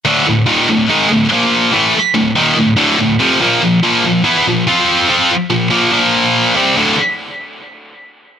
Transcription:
\new Staff \with { instrumentName = "Distorted electric guitar" } { \clef bass \time 4/4 \key d \minor \tempo 4 = 143 <d, a, d>8 <d, a,>8 <ees, bes, ees>8 <d, a,>8 <gis, ees gis>8 <d, a,>8 <bes, f bes>4 | <a, e a>8 r8 <d, a,>8 <ees, bes, ees>8 <d, a,>8 <d, a, d>8 <d, a,>8 <f, c f>8 | <bes, f bes>8 <bes, f>8 <bes, f bes>8 <bes, f>8 <e b e'>8 <bes, f>8 <f c' f'>4 | <f c' f'>8 r8 <bes, f>8 <bes, f bes>8 <bes, f bes>4. <c g c'>8 |
<d, a, d>8 r2. r8 | }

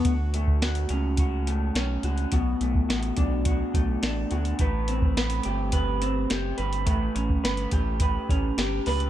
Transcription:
<<
  \new Staff \with { instrumentName = "Clean electric guitar" } { \time 4/4 \key d \major \tempo 4 = 106 fis'8 a8 fis'8 cis'8 fis'8 a8 cis'8 fis'8 | <b, fis'>8 a8 fis'8 d'8 fis'8 a8 d'8 fis'8 | <a b'>8 c'8 b'8 g'8 b'8 c'8 g'8 b'8 | <a b'>8 cis'8 b'8 g'8 b'8 cis'8 g'8 b'8 | }
  \new Staff \with { instrumentName = "Analog synth bass" } { \clef bass \time 4/4 \key d \major d,4. cis,4. b,,8 cis,8 | b,,8 b,,8 a,,8 b,,4 b,,8 a,,8 d,8 | a,,4. g,,4. fis,,8 g,,8 | a,,8 a,,8 g,,8 a,,4 a,,8 g,,8 cis,8 | }
  \new DrumStaff \with { instrumentName = "Drums" } \drummode { \time 4/4 <hh bd>8 hh16 bd16 <hh sn>16 hh16 hh8 <hh bd>8 hh8 <hh sn>8 hh16 hh16 | <hh bd>8 hh16 bd16 <hh sn>16 hh16 <hh bd>8 <hh bd>8 <hh bd>8 <hh sn>8 hh16 hh16 | <hh bd>8 hh16 bd16 <hh sn>16 hh16 hh8 <hh bd>8 hh8 <hh sn>8 hh16 hh16 | <hh bd>8 hh16 bd16 <hh sn>16 hh16 <hh bd>8 <hh bd>8 <hh bd>8 <hh sn>8 <hho sn>16 hh16 | }
>>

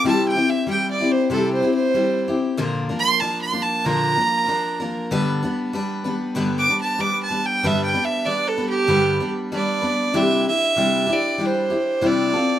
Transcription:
<<
  \new Staff \with { instrumentName = "Fiddle" } { \time 4/4 \key g \mixolydian \tempo 4 = 95 \tuplet 3/2 { a''8 g''8 e''8 g''8 d''8 c''8 a'8 c''8 c''8~ } c''8 r8 | \tuplet 3/2 { r4 c'''8 a''8 c'''8 a''8 } bes''2 | r2 \tuplet 3/2 { r8 d'''8 a''8 d'''8 a''8 g''8 } | \tuplet 3/2 { e''8 g''8 e''8 d''8 a'8 g'8~ } g'8 r8 d''4 |
\key c \major e''8 e''4 d''8 c''4 d''4 | }
  \new Staff \with { instrumentName = "Steel-string acoustic guitar" } { \time 4/4 \key g \mixolydian <c g c' e' g'>8 <c' e' g'>8 <g c' e' g'>8 <c' e' g'>8 <c g c' e' g'>8 <c' e' g'>8 <g c' e' g'>8 <c' e' g'>8 | <bes, d f bes d' bes'>8 <f bes d' bes'>8 <f bes d' bes'>8 <f bes d' bes'>8 <bes, d f bes d' bes'>8 <f bes d' bes'>8 <f bes d' bes'>8 <f bes d' bes'>8 | <g, d g b d' b'>8 <g b d' b'>8 <g b d' b'>8 <g b d' b'>8 <g, d g b d' b'>8 <g b d' b'>8 <g b d' b'>8 <g b d' b'>8 | <g, d g b d' b'>8 <g b d' b'>8 <g b d' b'>8 <g b d' b'>8 <g, d g b d' b'>8 <g b d' b'>8 <g b d' b'>8 <g b d' b'>8 |
\key c \major <c g d' e' g'>8 <d' e' g'>8 <c g d' e' g'>8 <d' e' g'>8 <g d' e' g'>8 <d' e' g'>8 <c g d' e' g'>8 <c' f' a'>8 | }
>>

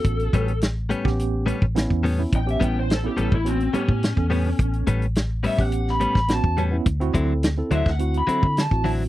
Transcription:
<<
  \new Staff \with { instrumentName = "Lead electric guitar" } { \time 4/4 \key a \mixolydian \tempo 4 = 106 a'4 r2. | g''16 e''16 g''16 c''16 a'16 g'16 a'16 e'16 c'8 cis'4.~ | cis'8 r4 e''16 fis''8 b''8. a''8 r8 | r4. e''16 fis''8 b''8. a''8 r8 | }
  \new Staff \with { instrumentName = "Tine electric piano" } { \time 4/4 \key a \mixolydian <b cis' fis'>8. r4 <b cis' g'>4 r16 <b cis' e'>8 r16 <b cis' e'>16~ | <b cis' e'>16 <b cis' g'>16 <b cis' e'>8 r16 <b cis' e'>8 r16 <b cis' fis'>8 <b cis' g'>8 r16 <b cis' a'>8.~ | <b cis' a'>8. r4 <b cis' g'>4 r16 <b cis' fis'>8 r16 <b cis' e'>16 | r16 <c' e' fis'>16 <c' e' a'>8 r16 <c' e' a'>8 r16 <c' e' fis'>8 <c' e' a'>8 r16 <c' e' fis'>8. | }
  \new Staff \with { instrumentName = "Clean electric guitar" } { \time 4/4 \key a \mixolydian r8 <a, g b cis'>8 r8 <a, g b cis'>8 r8 <a, g b cis'>8 r8 <a, g b cis'>8 | r8 <a, g b cis'>8 r8 <a, g b cis'>8 r8 <a, g b cis'>8 r8 <a, g b cis'>8 | r8 <a, g b cis'>8 r8 <a, g b cis'>8 r8 <a, g b cis'>8 r8 <a, g b cis'>8 | r8 <d fis c' e'>8 r8 <d fis c' e'>8 r8 <d fis c' e'>8 r8 <d fis c' e'>8 | }
  \new Staff \with { instrumentName = "Fingered electric bass" } { \clef bass \time 4/4 \key a \mixolydian a,,8 a,,4~ a,,16 a,,4 a,,8 e,8. | a,,8 a,,4 a,,16 a,,8. r16 a,8 e,8. | a,,8 a,,4~ a,,16 a,,4 a,,8 e,8. | d,8 d,4 d,16 d,8. r16 d8 a,,8. | }
  \new DrumStaff \with { instrumentName = "Drums" } \drummode { \time 4/4 <hh bd>16 hh16 <hh bd>16 hh16 <hh sn>8 hh16 <bd sn>16 hh8 hh16 bd16 <hh sn>16 bd16 hho8 | <hh bd>16 hh16 <hh bd>8 <hh sn>8 hh16 bd16 hh16 hh16 hh16 bd16 <hh sn>16 bd16 hho8 | <hh bd>16 hh16 <hh bd>16 hh16 <hh sn>8 hho16 bd16 hh16 sn16 hh16 <bd sn>16 <hh sn>16 bd16 hh8 | <hh bd>16 hh16 <hh bd>8 <hh sn>8 hh16 <bd sn>16 hh16 hh16 hh16 bd16 <hh sn>16 bd16 hho8 | }
>>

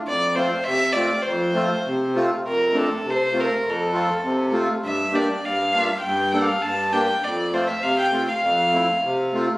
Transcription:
<<
  \new Staff \with { instrumentName = "Violin" } { \time 2/4 \key f \major \tempo 4 = 100 d''8 c''8 e''8 d''8 | c''4. r8 | bes'8 a'8 c''8 bes'8 | a'4. r8 |
e''8 d''8 f''8 e''8 | g''8 f''8 a''8 g''8 | d''8 c''16 e''16 f''16 g''8 f''16~ | f''4. r8 | }
  \new Staff \with { instrumentName = "Accordion" } { \time 2/4 \key f \major r8 <a c' f'>16 r8. <a c' f'>16 r16 | r8 <a c' f'>16 r8. <a c' f'>16 r16 | r8 <a c' d'>16 r8. <a c' f'>16 r16 | r8 <a c' f'>16 r8. <a c' f'>16 r16 |
r8 <bes d' g'>16 r8. <bes d' f'>16 r16 | r8 <bes d' a'>16 r8. <bes d' g'>16 r16 | r8 <a c' f'>16 r8. <a c' f'>16 r16 | r8 <a c' e'>16 r8. <a c' f'>16 r16 | }
  \new Staff \with { instrumentName = "Accordion" } { \clef bass \time 2/4 \key f \major f,4 c4 | f,4 c4 | f,4 c4 | f,4 c4 |
g,4 g,4 | g,4 g,4 | f,4 c4 | f,4 c4 | }
>>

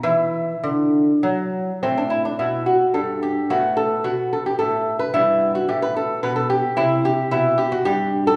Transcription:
<<
  \new Staff \with { instrumentName = "Lute" } { \time 3/4 \key g \major \tempo 4 = 109 r2. | c'16 d'16 e'16 d'16 e'8 fis'8 a'8 g'8 | fis'8 a'8 fis'8 a'16 g'16 a'8. b'16 | e'8. fis'16 g'16 b'16 a'8 b'16 a'16 g'8 |
e'8 g'8 e'8 g'16 fis'16 g'8. a'16 | }
  \new Staff \with { instrumentName = "Lute" } { \clef bass \time 3/4 \key g \major << { e'2. | r2. | b2. | b2. |
c'2. | } \\ { e4 d4 fis4 | a,4 b,4 g,4 | a,4 b,4 a,4 | g,4 a,4 b,4 |
c4 b,4 g,4 | } >> }
>>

